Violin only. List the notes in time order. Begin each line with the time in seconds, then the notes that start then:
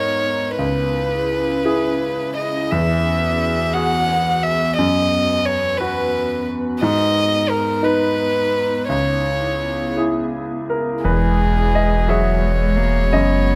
Already playing: C#5
0.58 B4
2.37 D#5
2.71 E5
3.74 F#5
4.43 E5
4.78 D#5
5.46 C#5
5.78 B4
6.82 D#5
7.49 A#4
7.84 B4
8.90 C#5
11.05 G#4
12.10 C#5